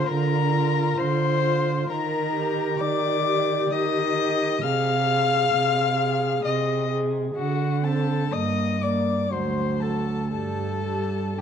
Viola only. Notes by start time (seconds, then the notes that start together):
Already playing: F4
0.53 F4
1.44 F4
2.33 G4
3.26 G4
4.17 G4
4.63 G#4
5.08 G#4
5.99 G#4
6.90 G#4
7.83 C4
8.33 A#3
8.82 A#3
9.32 F#3
9.82 F#3
10.32 G3
10.84 G3
11.37 D3